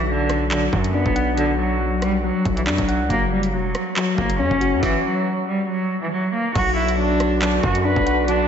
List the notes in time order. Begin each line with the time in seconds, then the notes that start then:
Already playing: B1 F#3
0.07 D3 F#3
0.30 cross-stick, closed hi-hat
0.51 D3 F#3, clap, closed hi-hat
0.73 F#2 F#3, kick
0.84 closed hi-hat
0.94 B3 D4
1.06 B1, kick
1.16 F#5, closed hi-hat
1.37 D3 F#3, closed hi-hat
1.59 F#3
1.81 F#3
2.02 G3, cross-stick, closed hi-hat
2.24 F#3
2.45 B1 F#3, kick, closed hi-hat
2.57 E3, closed hi-hat
2.67 F#2 F#3 D4, clap
2.78 B1, kick, closed hi-hat
2.88 F#5, closed hi-hat
3.00 C#2
3.10 F#1 F#3 A#3, kick, closed hi-hat
3.32 F#3 G3
3.43 closed hi-hat
3.53 E1 F#3
3.75 cross-stick, closed hi-hat
3.96 F#3, clap, closed hi-hat
4.18 F#1 F#3 A#3, kick
4.30 closed hi-hat
4.39 F#2 C#4
4.51 F#1, kick
4.61 F#4, closed hi-hat
4.73 F#2
4.83 E3, kick, snare
5.05 F#3
5.48 G3
5.69 F#3
6.02 E3
6.12 F#3
6.34 A#3
6.55 B1 D3 F#3 B3 F#4, kick, closed hi-hat, crash
6.77 F#3 E4
6.88 closed hi-hat
6.98 F#3 D4
7.20 cross-stick, closed hi-hat
7.42 F#3 D4, clap, closed hi-hat
7.63 F#2 F#3 F#4, kick
7.75 closed hi-hat
7.85 D4 B4
7.96 B1, kick
8.06 F#5, closed hi-hat
8.28 F#3 D4, closed hi-hat